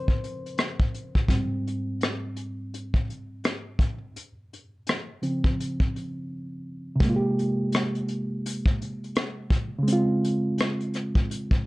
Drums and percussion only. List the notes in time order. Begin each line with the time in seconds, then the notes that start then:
0.08 kick
0.24 closed hi-hat
0.46 closed hi-hat
0.58 cross-stick, closed hi-hat
0.80 kick
0.94 closed hi-hat
1.15 kick
1.28 kick, closed hi-hat
1.67 closed hi-hat
2.01 cross-stick, closed hi-hat
2.36 closed hi-hat
2.74 closed hi-hat
2.94 kick
3.10 closed hi-hat
3.44 cross-stick, closed hi-hat
3.79 kick, closed hi-hat
4.16 closed hi-hat
4.53 closed hi-hat
4.87 cross-stick, closed hi-hat
5.23 closed hi-hat
5.44 kick
5.60 closed hi-hat
5.80 kick
5.96 closed hi-hat
7.00 kick, closed hi-hat
7.39 closed hi-hat
7.72 cross-stick, closed hi-hat
7.95 closed hi-hat
8.08 closed hi-hat
8.46 closed hi-hat
8.66 kick
8.82 closed hi-hat
9.04 closed hi-hat
9.16 cross-stick, closed hi-hat
9.50 kick, closed hi-hat
9.87 closed hi-hat
10.24 closed hi-hat
10.58 cross-stick, closed hi-hat
10.80 closed hi-hat
10.94 cross-stick, closed hi-hat
11.15 kick
11.31 closed hi-hat
11.51 kick